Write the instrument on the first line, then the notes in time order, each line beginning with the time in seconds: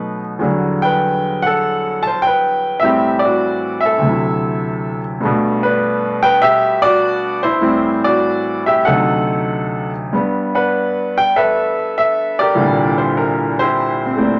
grand piano
Already playing: B2 F#3 A3 D#4 B4
0.39 E2 D3 G3
0.45 F#3
0.82 B4 G5
1.42 A4 F#5
2.03 A5
2.07 C5
2.22 G5
2.27 B4
2.80 A2 E5
2.84 E3 G3 C4 G4
3.19 D5
3.25 F#4
3.81 E5
3.85 A4
3.98 D2 C3
4.06 F#3 E4
5.20 G2 G3 A3
5.25 B2
5.63 D4 B4
6.23 B4 G5
6.42 G4 E5
6.82 F#4 D5
7.43 E4 C5
7.61 A2 E3 G3 C4
8.04 F#4 D5
8.66 G4 E5
8.85 D2 C3 F#3 D#4 A4 F#5
10.13 G2 G3 B3
10.55 D4 B4 F#5
11.18 G5
11.36 A4 B4 E5
11.98 E5
12.39 G4 A#4 D5
12.55 C2 G2 D3 E3
12.60 A#2 G3
12.98 C5
13.17 A#4
13.59 E4 G4 C5
14.06 C4
14.16 E3 A3 A#3 C4
14.22 D4